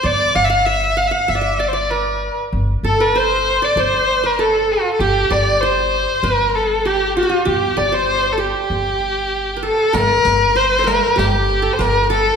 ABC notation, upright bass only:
X:1
M:4/4
L:1/8
Q:1/4=97
K:none
V:1 name="Upright bass" clef=bass
G,,, G,,,3 G,,,4 | G,,, G,,,3 G,,,4 | G,,, G,,,3 G,,,4 | G,,, G,,,3 G,,,4 |
G,,, G,,,3 G,,,2 G,,,2 |]